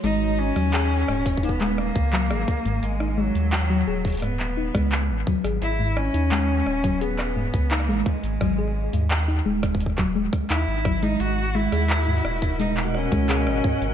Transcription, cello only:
X:1
M:4/4
L:1/16
Q:1/4=86
K:B
V:1 name="Cello"
D2 C6 B,2 A,6 | G,2 F,6 B,6 z2 | E2 C6 B,4 A,2 G,2- | G,4 z8 E3 D |
F2 E6 D2 C6 |]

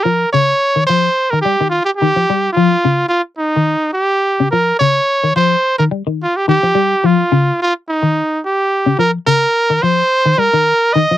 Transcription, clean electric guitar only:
X:1
M:4/4
L:1/16
Q:"Swing 16ths" 1/4=108
K:Dblyd
V:1 name="Clean electric guitar" clef=bass
F,2 D,2 z E, F,2 z E, G, E,2 z E, F, | G,2 F,2 D,2 z3 E,2 z4 D, | F,2 D,2 z E, F,2 z E, G, E,2 z E, F, | G,2 F,2 D,2 z3 E,2 z4 D, |
F,2 D,2 z E, F,2 z E, G, E,2 z E, F, |]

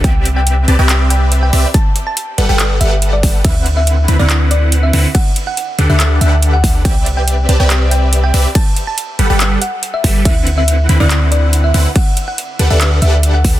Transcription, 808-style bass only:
X:1
M:4/4
L:1/16
Q:1/4=141
K:G
V:1 name="808-style bass" clef=bass
C,,6 C,, C,,6- C,, C,, z | z6 G,,, G,,,3 G,,,6 | D,,6 D,, D,,6- D,, D,, z | z6 D,, D,,3 D,,6 |
C,,6 C,, C,,6- C,, C,, z | z6 G,,, G,,,3 z4 G,,,2 | D,,6 D,, D,,6- D,, D,, z | z6 D,, D,,3 D,,6 |]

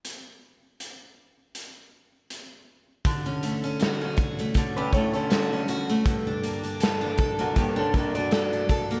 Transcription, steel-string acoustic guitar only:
X:1
M:4/4
L:1/16
Q:"Swing 16ths" 1/4=80
K:D
V:1 name="Steel-string acoustic guitar"
z16 | D, C A, C F C F A, D, C A, C F C F A, | G,, D _B, D A D A B, G,, D B, D A D A B, |]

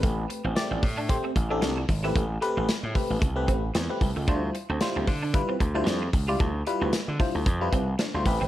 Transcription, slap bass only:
X:1
M:4/4
L:1/16
Q:"Swing 16ths" 1/4=113
K:Ddor
V:1 name="Slap bass" clef=bass
A,,,2 z A,,, z A,,, A,,3 z A,,,2 C,,2 ^G,,,2 | A,,,2 z A,,, z A,, z A,,, C,,2 A,,,2 E,, z C,, ^C,, | D,,2 z D,, z D,, D,3 z D,,2 F,,2 ^C,,2 | D,,2 z D,, z D, z D,, F,,2 C,,2 z D,, A,,, ^G,,, |]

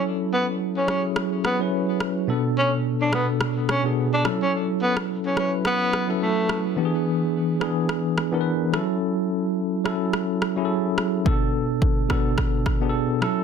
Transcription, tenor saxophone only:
X:1
M:4/4
L:1/16
Q:"Swing 16ths" 1/4=107
K:F#m
V:1 name="Tenor saxophone"
z2 B, z2 C C z3 B, z4 z | z2 C z2 D B, z3 C z2 D z C | z2 B, z2 C C z B,3 z A,3 z | z16 |
z16 | z16 |]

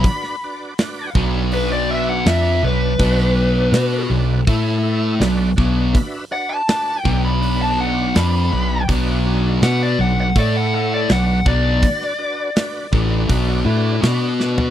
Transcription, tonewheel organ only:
X:1
M:4/4
L:1/8
Q:1/4=82
K:Bm
V:1 name="Tonewheel organ"
[DFBd] [DFBd] [DFBd] [DFBd] [DFBd] [DFBd] [DBd] [DFBd] | [DFBd] [DFBd] [DFBd] [DFBd] [A,EAe] [A,EAe] [DFBd] [DFBd] | [DFBe] [DFBd] [DFBd] [DFBd] [DFBd] [DFBd] [DBd] [DFBd] | [DFBd] [DFBd] [DFBd] [DFBd] [A,EAe] [A,EAe] [DFBd] [DFBd] |
[DFBd] [DFBd] [DFBd] [DFBd] [DFBd] [DFBd] [DFBd] [DFBd] |]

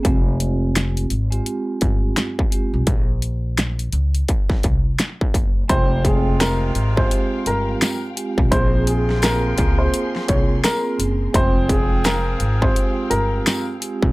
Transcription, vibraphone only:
X:1
M:4/4
L:1/16
Q:"Swing 16ths" 1/4=85
K:Fm
V:1 name="Vibraphone"
[A,CFG]6 z [A,CFG]6 z [A,CFG]2 | z16 | [A,CFg]6 z [A,CFG]6 z [A,CFG]2 | [B,CFA]6 [B,CFA]6 [B,CA]2 [B,CDA]2 |
[A,CFg]6 z [A,CFG]6 z [A,CFG]2 |]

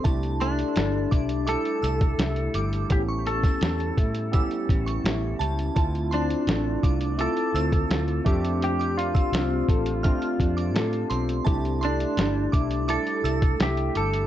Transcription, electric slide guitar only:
X:1
M:4/4
L:1/8
Q:1/4=84
K:C
V:1 name="Electric slide guitar"
z D3 A4 | G A6 z | z D3 A4 | G F6 z |
z D3 A2 G A |]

